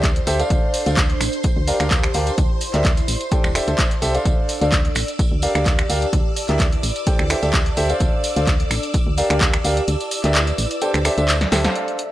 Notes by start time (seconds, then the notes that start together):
Already playing: D2 A4 C5 D5 C6
0.00 A5, kick, clap, closed hi-hat, tambourine
0.16 closed hi-hat
0.27 D2 G4 A4 C5 E5, open hi-hat, tambourine
0.40 D4 A4 C5 D5 F5, closed hi-hat, tambourine
0.50 D2 D4, kick, closed hi-hat, tambourine
0.74 open hi-hat, tambourine
0.86 D2 D4 A4 C5 D5 F5, closed hi-hat, tambourine
0.97 kick, clap, closed hi-hat, tambourine
1.10 closed hi-hat
1.21 A1, finger snap, open hi-hat, tambourine
1.32 closed hi-hat, tambourine
1.43 G4, kick, closed hi-hat, tambourine
1.57 D2
1.67 D4 G4 A#4 D5 F5, open hi-hat, tambourine
1.78 D2 D4 G4 A#4 D5 F5 A5, finger snap, closed hi-hat, tambourine
1.91 kick, clap, closed hi-hat, tambourine
2.04 finger snap, closed hi-hat
2.14 D2 D4 G4 A#4 D5 F5, open hi-hat, tambourine
2.26 closed hi-hat, tambourine
2.38 D2 E4, kick, closed hi-hat, tambourine
2.61 open hi-hat, tambourine
2.74 D2 D4 G4 A#4 D5 E5, clap, closed hi-hat, tambourine
2.80 D5
2.84 kick, clap, closed hi-hat, tambourine
2.97 closed hi-hat, tambourine
3.08 A1, open hi-hat, tambourine
3.20 closed hi-hat, tambourine
3.31 D4 G4 A4 C5 G5, kick, closed hi-hat, tambourine
3.44 D1, finger snap, tambourine
3.55 D4 G4 A4 C5 E5, finger snap, open hi-hat, tambourine
3.67 D2 D4 G4 A4 C5 E5, closed hi-hat, tambourine
3.74 A5
3.79 kick, clap, closed hi-hat, tambourine
3.91 closed hi-hat
4.02 C2 G4 A4 C5 E5, open hi-hat, tambourine
4.14 D4 A4 C5 D5 F5, closed hi-hat, tambourine
4.25 D2 D4 D5 E6, kick, closed hi-hat, tambourine
4.49 open hi-hat, tambourine
4.61 D2 D4 A4 C5 D5 F5, closed hi-hat, tambourine
4.72 kick, clap, closed hi-hat, tambourine
4.85 closed hi-hat
4.95 A1, finger snap, open hi-hat, tambourine
5.08 closed hi-hat, tambourine
5.19 G4, kick, closed hi-hat, tambourine
5.32 D2 D5
5.42 D4 G4 A#4 D5 F5, open hi-hat, tambourine
5.55 D2 D4 G4 A#4 D5 F5, finger snap, closed hi-hat, tambourine
5.62 A5
5.66 kick, clap, closed hi-hat, tambourine
5.79 finger snap, closed hi-hat
5.90 D2 D4 G4 A#4 D5 F5, open hi-hat, tambourine
6.02 closed hi-hat, tambourine
6.13 D2 E4, kick, closed hi-hat, tambourine
6.36 open hi-hat, tambourine
6.48 D2 D4 G4 A#4 D5 E5, clap, closed hi-hat, tambourine
6.55 B4
6.59 kick, clap, closed hi-hat, tambourine
6.72 closed hi-hat
6.83 A1, open hi-hat, tambourine
6.96 closed hi-hat, tambourine
7.07 D4 G4 A4 C5 G5, kick, closed hi-hat, tambourine
7.19 D2, finger snap
7.28 D4 G4 A4 C5 E5 A5, finger snap, open hi-hat, tambourine
7.43 D2 D4 G4 A4 C5 E5, closed hi-hat, tambourine
7.53 kick, clap, closed hi-hat, tambourine
7.66 closed hi-hat
7.77 D2 G4 A4 C5 E5, open hi-hat, tambourine
7.89 D4 A4 C5 D5 F5, closed hi-hat, tambourine
8.00 D2 D4, kick, closed hi-hat, tambourine
8.24 open hi-hat, tambourine
8.36 D2 D4 A4 C5 D5 F5, closed hi-hat, tambourine
8.47 kick, clap, closed hi-hat, tambourine
8.60 closed hi-hat
8.71 A1, finger snap, open hi-hat, tambourine
8.83 closed hi-hat, tambourine
8.94 G4, kick, closed hi-hat, tambourine
9.07 D2
9.18 D4 G4 A#4 D5 F5, open hi-hat, tambourine
9.30 D2 D4 G4 A#4 D5 F5, finger snap, closed hi-hat, tambourine
9.37 D5 A5
9.41 kick, clap, closed hi-hat, tambourine
9.54 finger snap, closed hi-hat
9.64 D2 D4 G4 A#4 D5 F5, open hi-hat, tambourine
9.77 closed hi-hat, tambourine
9.88 D2 E4, closed hi-hat, tambourine
10.00 closed hi-hat, tambourine
10.11 B4, open hi-hat, tambourine
10.24 D2 D4 G4 A#4 D5 E5, clap, closed hi-hat, tambourine
10.30 D5
10.35 clap, closed hi-hat, tambourine
10.47 closed hi-hat, tambourine
10.58 A1, open hi-hat, tambourine
10.71 closed hi-hat, tambourine
10.81 D4 G4 A4 C5 G5, closed hi-hat, tambourine
10.94 D2, finger snap, closed hi-hat, tambourine
11.05 D4 G4 A4 C5 E5, finger snap, open hi-hat, tambourine
11.18 D2 D4 G4 A4 C5 E5, closed hi-hat, tambourine
11.24 A5
11.28 clap, closed hi-hat, tambourine
11.41 snare, closed hi-hat
11.52 D2 G4 A4 C5 E5, snare, open hi-hat, tambourine
11.64 D4 A4 C5 D5 F5, snare, closed hi-hat, tambourine
11.75 D4 E5 E6, closed hi-hat
11.88 closed hi-hat
11.99 closed hi-hat